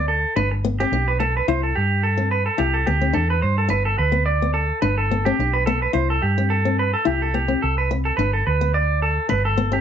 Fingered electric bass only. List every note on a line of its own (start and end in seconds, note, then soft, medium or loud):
0.00 0.24 D2 medium
0.37 0.84 G1 medium
0.92 1.40 B1 medium
1.48 1.72 C2 medium
1.77 2.48 G2 medium
2.60 2.84 C2 medium
2.88 3.13 D2 medium
3.16 3.41 E2 medium
3.43 3.68 G2 medium
3.71 3.95 G1 medium
3.99 4.71 D2 medium
4.83 5.31 G1 medium
5.39 5.87 B1 medium
5.95 6.19 C2 medium
6.23 6.94 G2 medium
7.07 7.54 C2 medium
7.64 8.11 C2 medium
8.18 8.42 G1 medium
8.47 9.18 D2 medium
9.32 9.78 G1 medium